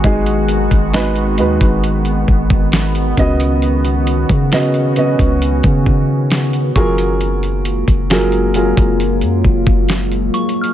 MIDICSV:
0, 0, Header, 1, 6, 480
1, 0, Start_track
1, 0, Tempo, 895522
1, 21, Time_signature, 4, 2, 24, 8
1, 5754, End_track
2, 0, Start_track
2, 0, Title_t, "Synth bell"
2, 0, Program_c, 0, 98
2, 0, Note_on_c, 0, 80, 74
2, 777, Note_off_c, 0, 80, 0
2, 3621, Note_on_c, 0, 85, 59
2, 4858, Note_off_c, 0, 85, 0
2, 5542, Note_on_c, 0, 85, 74
2, 5689, Note_on_c, 0, 89, 51
2, 5754, Note_off_c, 0, 85, 0
2, 5754, Note_off_c, 0, 89, 0
2, 5754, End_track
3, 0, Start_track
3, 0, Title_t, "Grand piano"
3, 0, Program_c, 1, 0
3, 0, Control_c, 1, 64, 127
3, 20, Note_on_c, 1, 56, 88
3, 24, Note_on_c, 1, 63, 78
3, 27, Note_on_c, 1, 66, 81
3, 30, Note_on_c, 1, 68, 96
3, 404, Note_off_c, 1, 56, 0
3, 405, Note_off_c, 1, 63, 0
3, 407, Note_off_c, 1, 66, 0
3, 408, Note_off_c, 1, 68, 0
3, 500, Note_on_c, 1, 56, 98
3, 504, Note_on_c, 1, 63, 88
3, 507, Note_on_c, 1, 66, 88
3, 510, Note_on_c, 1, 71, 109
3, 692, Note_off_c, 1, 56, 0
3, 694, Note_off_c, 1, 63, 0
3, 695, Note_off_c, 1, 66, 0
3, 697, Note_off_c, 1, 71, 0
3, 740, Note_on_c, 1, 56, 88
3, 744, Note_on_c, 1, 63, 79
3, 747, Note_on_c, 1, 66, 83
3, 750, Note_on_c, 1, 71, 94
3, 1506, Note_off_c, 1, 56, 0
3, 1508, Note_off_c, 1, 63, 0
3, 1510, Note_off_c, 1, 66, 0
3, 1511, Note_off_c, 1, 71, 0
3, 1701, Note_on_c, 1, 49, 99
3, 1704, Note_on_c, 1, 59, 90
3, 1707, Note_on_c, 1, 66, 84
3, 1709, Control_c, 1, 64, 0
3, 1711, Note_on_c, 1, 75, 106
3, 1788, Control_c, 1, 64, 127
3, 2277, Note_off_c, 1, 49, 0
3, 2279, Note_off_c, 1, 59, 0
3, 2280, Note_off_c, 1, 66, 0
3, 2282, Note_off_c, 1, 75, 0
3, 2422, Note_on_c, 1, 49, 95
3, 2425, Note_on_c, 1, 59, 88
3, 2428, Note_on_c, 1, 66, 88
3, 2431, Note_on_c, 1, 75, 97
3, 2613, Note_off_c, 1, 49, 0
3, 2615, Note_off_c, 1, 59, 0
3, 2616, Note_off_c, 1, 66, 0
3, 2618, Note_off_c, 1, 75, 0
3, 2661, Note_on_c, 1, 49, 89
3, 2665, Note_on_c, 1, 59, 84
3, 2668, Note_on_c, 1, 66, 84
3, 2671, Note_on_c, 1, 75, 93
3, 3427, Note_off_c, 1, 49, 0
3, 3429, Note_off_c, 1, 59, 0
3, 3431, Note_off_c, 1, 66, 0
3, 3432, Note_off_c, 1, 75, 0
3, 3620, Note_on_c, 1, 54, 90
3, 3624, Note_on_c, 1, 65, 85
3, 3627, Control_c, 1, 64, 0
3, 3627, Note_on_c, 1, 68, 84
3, 3631, Note_on_c, 1, 70, 105
3, 3720, Control_c, 1, 64, 127
3, 4197, Note_off_c, 1, 54, 0
3, 4198, Note_off_c, 1, 65, 0
3, 4200, Note_off_c, 1, 68, 0
3, 4202, Note_off_c, 1, 70, 0
3, 4342, Note_on_c, 1, 54, 93
3, 4345, Note_on_c, 1, 65, 80
3, 4348, Note_on_c, 1, 68, 84
3, 4352, Note_on_c, 1, 70, 99
3, 4533, Note_off_c, 1, 54, 0
3, 4534, Note_off_c, 1, 65, 0
3, 4536, Note_off_c, 1, 68, 0
3, 4538, Note_off_c, 1, 70, 0
3, 4582, Note_on_c, 1, 54, 86
3, 4585, Note_on_c, 1, 65, 76
3, 4588, Note_on_c, 1, 68, 78
3, 4592, Note_on_c, 1, 70, 95
3, 5347, Note_off_c, 1, 54, 0
3, 5349, Note_off_c, 1, 65, 0
3, 5351, Note_off_c, 1, 68, 0
3, 5352, Note_off_c, 1, 70, 0
3, 5754, End_track
4, 0, Start_track
4, 0, Title_t, "Ambient pad"
4, 0, Program_c, 2, 92
4, 0, Note_on_c, 2, 51, 84
4, 0, Note_on_c, 2, 56, 78
4, 0, Note_on_c, 2, 59, 77
4, 0, Note_on_c, 2, 66, 93
4, 1679, Note_off_c, 2, 56, 0
4, 1680, Note_off_c, 2, 66, 0
4, 1702, Note_on_c, 2, 61, 76
4, 1703, Note_on_c, 2, 66, 93
4, 3599, Note_off_c, 2, 59, 0
4, 3600, Note_off_c, 2, 51, 0
4, 3602, Note_off_c, 2, 61, 0
4, 3603, Note_off_c, 2, 66, 0
4, 3621, Note_on_c, 2, 54, 94
4, 3621, Note_on_c, 2, 58, 77
4, 3621, Note_on_c, 2, 65, 83
4, 3622, Note_on_c, 2, 56, 73
4, 5754, Note_off_c, 2, 54, 0
4, 5754, Note_off_c, 2, 56, 0
4, 5754, Note_off_c, 2, 58, 0
4, 5754, Note_off_c, 2, 65, 0
4, 5754, End_track
5, 0, Start_track
5, 0, Title_t, "808-style bass"
5, 0, Program_c, 3, 38
5, 23, Note_on_c, 3, 32, 112
5, 368, Note_off_c, 3, 32, 0
5, 383, Note_on_c, 3, 32, 107
5, 744, Note_on_c, 3, 39, 108
5, 752, Note_off_c, 3, 32, 0
5, 856, Note_off_c, 3, 39, 0
5, 863, Note_on_c, 3, 32, 96
5, 1208, Note_off_c, 3, 32, 0
5, 1224, Note_on_c, 3, 32, 109
5, 1683, Note_off_c, 3, 32, 0
5, 1703, Note_on_c, 3, 37, 109
5, 2281, Note_off_c, 3, 37, 0
5, 2303, Note_on_c, 3, 49, 107
5, 2763, Note_off_c, 3, 49, 0
5, 2784, Note_on_c, 3, 37, 104
5, 3013, Note_off_c, 3, 37, 0
5, 3024, Note_on_c, 3, 49, 98
5, 3601, Note_off_c, 3, 49, 0
5, 3623, Note_on_c, 3, 30, 105
5, 4201, Note_off_c, 3, 30, 0
5, 4223, Note_on_c, 3, 30, 102
5, 4683, Note_off_c, 3, 30, 0
5, 4704, Note_on_c, 3, 30, 105
5, 4944, Note_on_c, 3, 42, 101
5, 4952, Note_off_c, 3, 30, 0
5, 5056, Note_off_c, 3, 42, 0
5, 5063, Note_on_c, 3, 30, 109
5, 5523, Note_off_c, 3, 30, 0
5, 5754, End_track
6, 0, Start_track
6, 0, Title_t, "Drums"
6, 21, Note_on_c, 9, 42, 57
6, 22, Note_on_c, 9, 36, 109
6, 75, Note_off_c, 9, 36, 0
6, 75, Note_off_c, 9, 42, 0
6, 141, Note_on_c, 9, 42, 59
6, 195, Note_off_c, 9, 42, 0
6, 260, Note_on_c, 9, 42, 73
6, 314, Note_off_c, 9, 42, 0
6, 382, Note_on_c, 9, 36, 91
6, 382, Note_on_c, 9, 42, 49
6, 435, Note_off_c, 9, 36, 0
6, 436, Note_off_c, 9, 42, 0
6, 501, Note_on_c, 9, 42, 71
6, 506, Note_on_c, 9, 38, 112
6, 555, Note_off_c, 9, 42, 0
6, 559, Note_off_c, 9, 38, 0
6, 620, Note_on_c, 9, 42, 46
6, 673, Note_off_c, 9, 42, 0
6, 739, Note_on_c, 9, 42, 77
6, 792, Note_off_c, 9, 42, 0
6, 862, Note_on_c, 9, 36, 104
6, 865, Note_on_c, 9, 42, 57
6, 916, Note_off_c, 9, 36, 0
6, 918, Note_off_c, 9, 42, 0
6, 984, Note_on_c, 9, 42, 71
6, 1038, Note_off_c, 9, 42, 0
6, 1099, Note_on_c, 9, 42, 52
6, 1152, Note_off_c, 9, 42, 0
6, 1223, Note_on_c, 9, 36, 90
6, 1276, Note_off_c, 9, 36, 0
6, 1341, Note_on_c, 9, 36, 102
6, 1395, Note_off_c, 9, 36, 0
6, 1458, Note_on_c, 9, 42, 70
6, 1464, Note_on_c, 9, 38, 121
6, 1512, Note_off_c, 9, 42, 0
6, 1518, Note_off_c, 9, 38, 0
6, 1581, Note_on_c, 9, 42, 51
6, 1635, Note_off_c, 9, 42, 0
6, 1701, Note_on_c, 9, 46, 69
6, 1702, Note_on_c, 9, 36, 102
6, 1702, Note_on_c, 9, 42, 56
6, 1755, Note_off_c, 9, 36, 0
6, 1755, Note_off_c, 9, 42, 0
6, 1755, Note_off_c, 9, 46, 0
6, 1822, Note_on_c, 9, 42, 57
6, 1875, Note_off_c, 9, 42, 0
6, 1942, Note_on_c, 9, 42, 63
6, 1995, Note_off_c, 9, 42, 0
6, 2062, Note_on_c, 9, 42, 53
6, 2115, Note_off_c, 9, 42, 0
6, 2181, Note_on_c, 9, 42, 75
6, 2235, Note_off_c, 9, 42, 0
6, 2302, Note_on_c, 9, 36, 91
6, 2303, Note_on_c, 9, 42, 49
6, 2355, Note_off_c, 9, 36, 0
6, 2357, Note_off_c, 9, 42, 0
6, 2422, Note_on_c, 9, 42, 75
6, 2426, Note_on_c, 9, 38, 115
6, 2475, Note_off_c, 9, 42, 0
6, 2480, Note_off_c, 9, 38, 0
6, 2541, Note_on_c, 9, 42, 44
6, 2594, Note_off_c, 9, 42, 0
6, 2659, Note_on_c, 9, 42, 77
6, 2713, Note_off_c, 9, 42, 0
6, 2783, Note_on_c, 9, 36, 103
6, 2785, Note_on_c, 9, 42, 58
6, 2836, Note_off_c, 9, 36, 0
6, 2839, Note_off_c, 9, 42, 0
6, 2904, Note_on_c, 9, 42, 75
6, 2958, Note_off_c, 9, 42, 0
6, 3019, Note_on_c, 9, 42, 50
6, 3023, Note_on_c, 9, 36, 110
6, 3073, Note_off_c, 9, 42, 0
6, 3076, Note_off_c, 9, 36, 0
6, 3143, Note_on_c, 9, 36, 91
6, 3197, Note_off_c, 9, 36, 0
6, 3379, Note_on_c, 9, 42, 73
6, 3385, Note_on_c, 9, 38, 113
6, 3433, Note_off_c, 9, 42, 0
6, 3439, Note_off_c, 9, 38, 0
6, 3502, Note_on_c, 9, 42, 49
6, 3556, Note_off_c, 9, 42, 0
6, 3622, Note_on_c, 9, 36, 101
6, 3623, Note_on_c, 9, 42, 55
6, 3676, Note_off_c, 9, 36, 0
6, 3676, Note_off_c, 9, 42, 0
6, 3742, Note_on_c, 9, 42, 57
6, 3796, Note_off_c, 9, 42, 0
6, 3863, Note_on_c, 9, 42, 60
6, 3916, Note_off_c, 9, 42, 0
6, 3982, Note_on_c, 9, 42, 55
6, 4036, Note_off_c, 9, 42, 0
6, 4101, Note_on_c, 9, 42, 77
6, 4155, Note_off_c, 9, 42, 0
6, 4222, Note_on_c, 9, 36, 98
6, 4224, Note_on_c, 9, 42, 48
6, 4276, Note_off_c, 9, 36, 0
6, 4277, Note_off_c, 9, 42, 0
6, 4342, Note_on_c, 9, 42, 72
6, 4347, Note_on_c, 9, 38, 118
6, 4396, Note_off_c, 9, 42, 0
6, 4400, Note_off_c, 9, 38, 0
6, 4460, Note_on_c, 9, 42, 44
6, 4514, Note_off_c, 9, 42, 0
6, 4579, Note_on_c, 9, 42, 76
6, 4633, Note_off_c, 9, 42, 0
6, 4703, Note_on_c, 9, 36, 107
6, 4705, Note_on_c, 9, 42, 56
6, 4756, Note_off_c, 9, 36, 0
6, 4758, Note_off_c, 9, 42, 0
6, 4824, Note_on_c, 9, 42, 72
6, 4877, Note_off_c, 9, 42, 0
6, 4939, Note_on_c, 9, 42, 51
6, 4993, Note_off_c, 9, 42, 0
6, 5063, Note_on_c, 9, 36, 90
6, 5116, Note_off_c, 9, 36, 0
6, 5181, Note_on_c, 9, 36, 102
6, 5235, Note_off_c, 9, 36, 0
6, 5298, Note_on_c, 9, 42, 71
6, 5304, Note_on_c, 9, 38, 121
6, 5352, Note_off_c, 9, 42, 0
6, 5358, Note_off_c, 9, 38, 0
6, 5422, Note_on_c, 9, 42, 47
6, 5476, Note_off_c, 9, 42, 0
6, 5542, Note_on_c, 9, 42, 52
6, 5542, Note_on_c, 9, 46, 68
6, 5596, Note_off_c, 9, 42, 0
6, 5596, Note_off_c, 9, 46, 0
6, 5622, Note_on_c, 9, 42, 53
6, 5676, Note_off_c, 9, 42, 0
6, 5702, Note_on_c, 9, 42, 57
6, 5754, Note_off_c, 9, 42, 0
6, 5754, End_track
0, 0, End_of_file